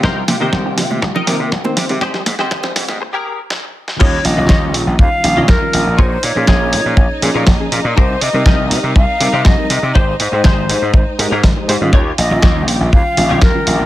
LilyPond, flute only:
\new Staff \with { instrumentName = "Flute" } { \time 4/4 \key ees \mixolydian \tempo 4 = 121 r1 | r1 | des''8 ees''4 r8 f''4 bes'4 | c''8 des''2. r8 |
c''8 ees''4 r8 f''4 ees''4 | c''8 c''2. r8 | des''8 ees''4 r8 f''4 bes'4 | }